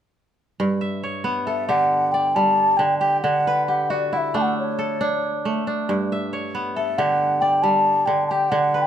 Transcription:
0, 0, Header, 1, 3, 480
1, 0, Start_track
1, 0, Tempo, 439883
1, 657, Time_signature, 12, 3, 24, 8
1, 9678, End_track
2, 0, Start_track
2, 0, Title_t, "Flute"
2, 0, Program_c, 0, 73
2, 1593, Note_on_c, 0, 76, 83
2, 1828, Note_off_c, 0, 76, 0
2, 1849, Note_on_c, 0, 78, 91
2, 2312, Note_on_c, 0, 79, 85
2, 2329, Note_off_c, 0, 78, 0
2, 2567, Note_on_c, 0, 81, 97
2, 2583, Note_off_c, 0, 79, 0
2, 3023, Note_on_c, 0, 79, 84
2, 3039, Note_off_c, 0, 81, 0
2, 3257, Note_off_c, 0, 79, 0
2, 3263, Note_on_c, 0, 79, 81
2, 3502, Note_off_c, 0, 79, 0
2, 3513, Note_on_c, 0, 78, 88
2, 3970, Note_off_c, 0, 78, 0
2, 4012, Note_on_c, 0, 78, 76
2, 4261, Note_on_c, 0, 74, 74
2, 4277, Note_off_c, 0, 78, 0
2, 4509, Note_on_c, 0, 78, 71
2, 4526, Note_off_c, 0, 74, 0
2, 4557, Note_on_c, 0, 76, 77
2, 4568, Note_off_c, 0, 78, 0
2, 4767, Note_on_c, 0, 81, 72
2, 4784, Note_off_c, 0, 76, 0
2, 4822, Note_on_c, 0, 78, 78
2, 4833, Note_off_c, 0, 81, 0
2, 4992, Note_off_c, 0, 78, 0
2, 5007, Note_on_c, 0, 73, 75
2, 6147, Note_off_c, 0, 73, 0
2, 7382, Note_on_c, 0, 76, 89
2, 7616, Note_on_c, 0, 78, 96
2, 7633, Note_off_c, 0, 76, 0
2, 8085, Note_on_c, 0, 79, 88
2, 8101, Note_off_c, 0, 78, 0
2, 8321, Note_on_c, 0, 81, 94
2, 8338, Note_off_c, 0, 79, 0
2, 8792, Note_on_c, 0, 79, 81
2, 8808, Note_off_c, 0, 81, 0
2, 9021, Note_off_c, 0, 79, 0
2, 9028, Note_on_c, 0, 81, 75
2, 9068, Note_on_c, 0, 79, 82
2, 9079, Note_off_c, 0, 81, 0
2, 9270, Note_on_c, 0, 78, 93
2, 9286, Note_off_c, 0, 79, 0
2, 9624, Note_on_c, 0, 79, 77
2, 9640, Note_off_c, 0, 78, 0
2, 9678, Note_off_c, 0, 79, 0
2, 9678, End_track
3, 0, Start_track
3, 0, Title_t, "Kora"
3, 0, Program_c, 1, 46
3, 652, Note_on_c, 1, 43, 67
3, 884, Note_on_c, 1, 76, 56
3, 1129, Note_on_c, 1, 73, 56
3, 1354, Note_on_c, 1, 59, 69
3, 1601, Note_on_c, 1, 69, 55
3, 1839, Note_on_c, 1, 67, 55
3, 1841, Note_on_c, 1, 50, 68
3, 1906, Note_off_c, 1, 73, 0
3, 2012, Note_off_c, 1, 76, 0
3, 2333, Note_on_c, 1, 74, 60
3, 2574, Note_on_c, 1, 55, 68
3, 3031, Note_off_c, 1, 50, 0
3, 3039, Note_off_c, 1, 69, 0
3, 3044, Note_on_c, 1, 50, 66
3, 3112, Note_off_c, 1, 55, 0
3, 3205, Note_off_c, 1, 43, 0
3, 3278, Note_off_c, 1, 67, 0
3, 3282, Note_on_c, 1, 67, 59
3, 3388, Note_off_c, 1, 59, 0
3, 3519, Note_off_c, 1, 50, 0
3, 3532, Note_on_c, 1, 50, 73
3, 3542, Note_off_c, 1, 74, 0
3, 3789, Note_on_c, 1, 71, 60
3, 4014, Note_off_c, 1, 67, 0
3, 4018, Note_on_c, 1, 67, 52
3, 4256, Note_on_c, 1, 66, 67
3, 4502, Note_on_c, 1, 64, 61
3, 4738, Note_on_c, 1, 62, 57
3, 4740, Note_on_c, 1, 57, 65
3, 5130, Note_off_c, 1, 71, 0
3, 5222, Note_on_c, 1, 69, 63
3, 5459, Note_off_c, 1, 62, 0
3, 5464, Note_on_c, 1, 62, 71
3, 5559, Note_off_c, 1, 67, 0
3, 5852, Note_off_c, 1, 66, 0
3, 5946, Note_off_c, 1, 57, 0
3, 5951, Note_on_c, 1, 57, 67
3, 6086, Note_off_c, 1, 50, 0
3, 6184, Note_off_c, 1, 62, 0
3, 6188, Note_on_c, 1, 62, 57
3, 6212, Note_off_c, 1, 64, 0
3, 6428, Note_on_c, 1, 43, 71
3, 6660, Note_off_c, 1, 69, 0
3, 6680, Note_on_c, 1, 76, 59
3, 6906, Note_on_c, 1, 73, 54
3, 6971, Note_off_c, 1, 62, 0
3, 7143, Note_on_c, 1, 59, 64
3, 7381, Note_on_c, 1, 69, 58
3, 7620, Note_on_c, 1, 50, 75
3, 7621, Note_on_c, 1, 67, 61
3, 7685, Note_off_c, 1, 73, 0
3, 7808, Note_off_c, 1, 76, 0
3, 8093, Note_on_c, 1, 74, 57
3, 8130, Note_off_c, 1, 57, 0
3, 8331, Note_on_c, 1, 55, 71
3, 8796, Note_off_c, 1, 50, 0
3, 8810, Note_on_c, 1, 50, 65
3, 8819, Note_off_c, 1, 69, 0
3, 8868, Note_off_c, 1, 55, 0
3, 8981, Note_off_c, 1, 43, 0
3, 9061, Note_off_c, 1, 67, 0
3, 9066, Note_on_c, 1, 67, 56
3, 9177, Note_off_c, 1, 59, 0
3, 9280, Note_off_c, 1, 50, 0
3, 9293, Note_on_c, 1, 50, 76
3, 9302, Note_off_c, 1, 74, 0
3, 9540, Note_on_c, 1, 71, 60
3, 9678, Note_off_c, 1, 50, 0
3, 9678, Note_off_c, 1, 67, 0
3, 9678, Note_off_c, 1, 71, 0
3, 9678, End_track
0, 0, End_of_file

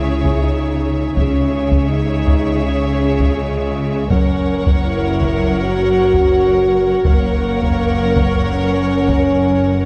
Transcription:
0, 0, Header, 1, 8, 480
1, 0, Start_track
1, 0, Tempo, 738007
1, 754, Time_signature, 4, 2, 24, 8
1, 6409, End_track
2, 0, Start_track
2, 0, Title_t, "Violin section"
2, 0, Program_c, 0, 48
2, 0, Note_on_c, 0, 76, 44
2, 733, Note_off_c, 0, 76, 0
2, 760, Note_on_c, 0, 76, 44
2, 2651, Note_off_c, 0, 76, 0
2, 2675, Note_on_c, 0, 78, 53
2, 4567, Note_off_c, 0, 78, 0
2, 4585, Note_on_c, 0, 78, 58
2, 6409, Note_off_c, 0, 78, 0
2, 6409, End_track
3, 0, Start_track
3, 0, Title_t, "Violin section"
3, 0, Program_c, 1, 48
3, 0, Note_on_c, 1, 73, 54
3, 732, Note_off_c, 1, 73, 0
3, 762, Note_on_c, 1, 73, 53
3, 2651, Note_off_c, 1, 73, 0
3, 2679, Note_on_c, 1, 73, 55
3, 4569, Note_off_c, 1, 73, 0
3, 4596, Note_on_c, 1, 73, 67
3, 6409, Note_off_c, 1, 73, 0
3, 6409, End_track
4, 0, Start_track
4, 0, Title_t, "Viola section"
4, 0, Program_c, 2, 48
4, 0, Note_on_c, 2, 68, 52
4, 729, Note_off_c, 2, 68, 0
4, 757, Note_on_c, 2, 68, 48
4, 2649, Note_off_c, 2, 68, 0
4, 2670, Note_on_c, 2, 70, 57
4, 4564, Note_off_c, 2, 70, 0
4, 4590, Note_on_c, 2, 70, 66
4, 6409, Note_off_c, 2, 70, 0
4, 6409, End_track
5, 0, Start_track
5, 0, Title_t, "French horn section"
5, 0, Program_c, 3, 60
5, 0, Note_on_c, 3, 64, 59
5, 274, Note_on_c, 3, 63, 73
5, 279, Note_off_c, 3, 64, 0
5, 754, Note_off_c, 3, 63, 0
5, 764, Note_on_c, 3, 61, 65
5, 1230, Note_off_c, 3, 61, 0
5, 1230, Note_on_c, 3, 63, 65
5, 1712, Note_off_c, 3, 63, 0
5, 1719, Note_on_c, 3, 61, 65
5, 2187, Note_off_c, 3, 61, 0
5, 2188, Note_on_c, 3, 56, 68
5, 2661, Note_off_c, 3, 56, 0
5, 2670, Note_on_c, 3, 61, 61
5, 3044, Note_off_c, 3, 61, 0
5, 3154, Note_on_c, 3, 64, 65
5, 3624, Note_off_c, 3, 64, 0
5, 3634, Note_on_c, 3, 66, 74
5, 4593, Note_off_c, 3, 66, 0
5, 4605, Note_on_c, 3, 58, 75
5, 5539, Note_off_c, 3, 58, 0
5, 5551, Note_on_c, 3, 61, 87
5, 6409, Note_off_c, 3, 61, 0
5, 6409, End_track
6, 0, Start_track
6, 0, Title_t, "Cello section"
6, 0, Program_c, 4, 48
6, 0, Note_on_c, 4, 49, 43
6, 731, Note_off_c, 4, 49, 0
6, 762, Note_on_c, 4, 49, 44
6, 2652, Note_off_c, 4, 49, 0
6, 2675, Note_on_c, 4, 42, 51
6, 4583, Note_off_c, 4, 42, 0
6, 4591, Note_on_c, 4, 42, 55
6, 6409, Note_off_c, 4, 42, 0
6, 6409, End_track
7, 0, Start_track
7, 0, Title_t, "Double bass section"
7, 0, Program_c, 5, 48
7, 0, Note_on_c, 5, 37, 46
7, 726, Note_off_c, 5, 37, 0
7, 755, Note_on_c, 5, 37, 52
7, 2648, Note_off_c, 5, 37, 0
7, 2670, Note_on_c, 5, 30, 52
7, 4586, Note_off_c, 5, 30, 0
7, 4594, Note_on_c, 5, 30, 50
7, 6409, Note_off_c, 5, 30, 0
7, 6409, End_track
8, 0, Start_track
8, 0, Title_t, "Taiko and cinematic ensemble drums"
8, 158, Note_on_c, 9, 41, 62
8, 223, Note_off_c, 9, 41, 0
8, 758, Note_on_c, 9, 41, 78
8, 823, Note_off_c, 9, 41, 0
8, 1119, Note_on_c, 9, 41, 65
8, 1184, Note_off_c, 9, 41, 0
8, 1477, Note_on_c, 9, 41, 67
8, 1542, Note_off_c, 9, 41, 0
8, 2077, Note_on_c, 9, 41, 72
8, 2142, Note_off_c, 9, 41, 0
8, 2675, Note_on_c, 9, 41, 78
8, 2740, Note_off_c, 9, 41, 0
8, 3034, Note_on_c, 9, 41, 64
8, 3099, Note_off_c, 9, 41, 0
8, 3390, Note_on_c, 9, 41, 69
8, 3455, Note_off_c, 9, 41, 0
8, 3990, Note_on_c, 9, 41, 70
8, 4056, Note_off_c, 9, 41, 0
8, 4587, Note_on_c, 9, 41, 82
8, 4652, Note_off_c, 9, 41, 0
8, 4951, Note_on_c, 9, 41, 69
8, 5016, Note_off_c, 9, 41, 0
8, 5310, Note_on_c, 9, 41, 79
8, 5375, Note_off_c, 9, 41, 0
8, 5909, Note_on_c, 9, 41, 69
8, 5974, Note_off_c, 9, 41, 0
8, 6409, End_track
0, 0, End_of_file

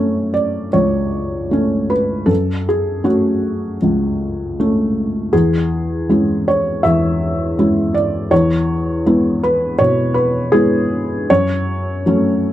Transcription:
0, 0, Header, 1, 2, 480
1, 0, Start_track
1, 0, Key_signature, 3, "minor"
1, 0, Tempo, 772201
1, 1427, Time_signature, 4, 2, 24, 8
1, 2379, Tempo, 754717
1, 4299, Tempo, 734394
1, 6699, Tempo, 769231
1, 7953, End_track
2, 0, Start_track
2, 0, Title_t, "Felt piano"
2, 0, Program_c, 0, 0
2, 0, Control_c, 0, 64, 127
2, 0, Note_on_c, 0, 42, 42
2, 0, Note_on_c, 0, 57, 31
2, 0, Note_on_c, 0, 61, 35
2, 0, Note_on_c, 0, 73, 55
2, 208, Note_off_c, 0, 73, 0
2, 210, Note_on_c, 0, 74, 55
2, 424, Note_off_c, 0, 57, 0
2, 425, Note_off_c, 0, 61, 0
2, 454, Note_off_c, 0, 74, 0
2, 454, Note_on_c, 0, 73, 53
2, 459, Note_on_c, 0, 37, 35
2, 931, Note_off_c, 0, 37, 0
2, 940, Note_on_c, 0, 57, 36
2, 951, Note_on_c, 0, 61, 40
2, 1180, Note_on_c, 0, 71, 54
2, 1186, Note_off_c, 0, 73, 0
2, 1399, Note_off_c, 0, 57, 0
2, 1404, Note_on_c, 0, 69, 57
2, 1405, Note_off_c, 0, 61, 0
2, 1406, Note_off_c, 0, 42, 0
2, 1406, Note_on_c, 0, 42, 43
2, 1423, Note_off_c, 0, 71, 0
2, 1436, Control_c, 0, 64, 0
2, 1551, Control_c, 0, 64, 127
2, 1654, Note_off_c, 0, 69, 0
2, 1670, Note_on_c, 0, 68, 48
2, 1880, Note_off_c, 0, 42, 0
2, 1889, Note_on_c, 0, 61, 37
2, 1893, Note_on_c, 0, 66, 52
2, 1894, Note_on_c, 0, 57, 30
2, 1907, Note_off_c, 0, 68, 0
2, 2345, Note_off_c, 0, 61, 0
2, 2347, Note_off_c, 0, 57, 0
2, 2376, Note_on_c, 0, 37, 34
2, 2843, Note_off_c, 0, 37, 0
2, 2868, Note_on_c, 0, 57, 36
2, 2873, Note_on_c, 0, 61, 36
2, 3312, Note_off_c, 0, 57, 0
2, 3315, Note_off_c, 0, 61, 0
2, 3326, Note_off_c, 0, 66, 0
2, 3333, Note_on_c, 0, 68, 59
2, 3334, Note_on_c, 0, 40, 50
2, 3342, Control_c, 0, 64, 0
2, 3454, Control_c, 0, 64, 127
2, 3798, Note_off_c, 0, 40, 0
2, 3820, Note_on_c, 0, 56, 36
2, 3826, Note_on_c, 0, 64, 34
2, 3828, Note_on_c, 0, 61, 35
2, 4055, Note_off_c, 0, 68, 0
2, 4065, Note_on_c, 0, 73, 54
2, 4275, Note_off_c, 0, 56, 0
2, 4278, Note_off_c, 0, 64, 0
2, 4279, Note_off_c, 0, 61, 0
2, 4290, Note_on_c, 0, 76, 64
2, 4295, Note_on_c, 0, 40, 43
2, 4301, Note_off_c, 0, 73, 0
2, 4765, Note_off_c, 0, 40, 0
2, 4783, Note_on_c, 0, 56, 35
2, 4785, Note_on_c, 0, 61, 34
2, 4789, Note_on_c, 0, 64, 36
2, 5015, Note_off_c, 0, 76, 0
2, 5017, Note_on_c, 0, 74, 57
2, 5232, Note_off_c, 0, 56, 0
2, 5233, Note_off_c, 0, 61, 0
2, 5235, Note_off_c, 0, 64, 0
2, 5255, Note_on_c, 0, 40, 56
2, 5256, Note_off_c, 0, 74, 0
2, 5257, Note_on_c, 0, 73, 69
2, 5268, Control_c, 0, 64, 0
2, 5371, Control_c, 0, 64, 127
2, 5719, Note_off_c, 0, 40, 0
2, 5748, Note_on_c, 0, 56, 38
2, 5752, Note_on_c, 0, 64, 39
2, 5753, Note_on_c, 0, 59, 41
2, 5975, Note_off_c, 0, 73, 0
2, 5991, Note_on_c, 0, 71, 67
2, 6196, Note_off_c, 0, 56, 0
2, 6198, Note_off_c, 0, 59, 0
2, 6198, Note_off_c, 0, 64, 0
2, 6220, Note_on_c, 0, 73, 70
2, 6223, Note_off_c, 0, 71, 0
2, 6229, Note_on_c, 0, 47, 43
2, 6454, Note_on_c, 0, 71, 67
2, 6457, Note_off_c, 0, 73, 0
2, 6688, Note_off_c, 0, 47, 0
2, 6695, Note_off_c, 0, 71, 0
2, 6699, Note_on_c, 0, 68, 78
2, 6707, Note_on_c, 0, 56, 38
2, 6707, Note_on_c, 0, 59, 44
2, 6712, Note_on_c, 0, 64, 46
2, 7162, Note_off_c, 0, 56, 0
2, 7162, Note_off_c, 0, 59, 0
2, 7165, Note_off_c, 0, 64, 0
2, 7183, Note_off_c, 0, 68, 0
2, 7187, Note_on_c, 0, 73, 88
2, 7190, Note_on_c, 0, 42, 59
2, 7193, Control_c, 0, 64, 0
2, 7280, Control_c, 0, 64, 127
2, 7640, Note_off_c, 0, 42, 0
2, 7661, Note_on_c, 0, 54, 42
2, 7665, Note_on_c, 0, 57, 39
2, 7672, Note_on_c, 0, 61, 44
2, 7953, Note_off_c, 0, 54, 0
2, 7953, Note_off_c, 0, 57, 0
2, 7953, Note_off_c, 0, 61, 0
2, 7953, Note_off_c, 0, 73, 0
2, 7953, End_track
0, 0, End_of_file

